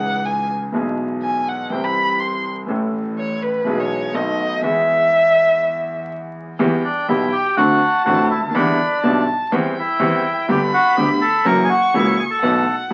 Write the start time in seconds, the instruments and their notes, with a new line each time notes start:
Already playing: double bass C#2, grand piano C#2 C#3 E3 C#4 D#4 G#4, violin F#5
0.25 violin G#5
0.72 grand piano B1 B2 E3 G#3 B3 G#4, double bass B1
1.23 violin G#5
1.49 violin F#5
1.70 double bass C2, grand piano C2 C3 E3 G3 C4 G4, violin G5
1.84 violin B5
2.20 violin C6
2.66 double bass A1, grand piano A1 A2 E3 A3 C#4 A4
3.19 violin C#5
3.42 violin B4
3.64 double bass B1, grand piano B1 B2 E3 G#3 B3
3.69 grand piano G#4
3.79 violin C#5
4.12 grand piano B1 B2 D#3 A3 B3 F#4, double bass B1, violin D#5
4.62 double bass E2, grand piano E2 E3 G#3 B3 G#4, violin E5
6.59 double bass E2, grand piano E2 E3 G3 B3 G4, violin G5
6.84 bandoneon D4
7.08 grand piano B1 B2 E3 G3 B3 G4, double bass B1, bandoneon E4
7.32 bandoneon G4
7.57 double bass D2, grand piano D2 D3 A3 C4 F#4, bandoneon F#4, violin A5
8.05 grand piano A1 A2 D3 A3 C4 F#4, double bass A1, bandoneon F#4
8.30 double bass D2, bandoneon E4
8.37 grand piano C#2
8.43 grand piano D2
8.49 grand piano D#2
8.54 double bass E2, grand piano E2 D3 E3 G3 B3 E4, bandoneon D4, violin B5
9.03 double bass B1, grand piano B1 B2 D3 G3 B3 E4, violin A5
9.52 double bass E2, grand piano E2 E3 G3 C4 G4, violin G5
9.79 bandoneon E4
9.99 grand piano E2 E3 G3 C4 G4, double bass E2
10.48 double bass G1, grand piano G1 G2 D3 G3 B3 G4, bandoneon G4, violin B5
10.74 bandoneon F#4
10.97 double bass D2, grand piano D2 D3 G3 B3 G4, bandoneon G4
11.21 bandoneon A4
11.45 double bass F#1, grand piano F#2 E3 F#3 A#3 C#4 F#4, bandoneon A#4, violin C#6
11.64 bandoneon G#4
11.69 bandoneon F#4
11.94 double bass C#2, grand piano C#2 C#3 E3 A#3 C#4 F#4, bandoneon E4
12.19 bandoneon G#4
12.30 bandoneon A4
12.42 grand piano B1 B2 E3 A3 B3 F#4, double bass B1, violin F#5